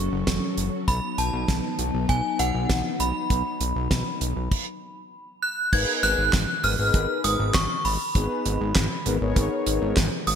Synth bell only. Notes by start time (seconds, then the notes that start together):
Already playing: C#6
0.88 B5
1.18 A5
2.09 G#5
2.39 F#5
3.00 B5
5.42 F#6
5.73 G#6
6.03 F#6
6.64 F6
7.24 D#6
7.54 C#6
7.85 B5
10.27 D#6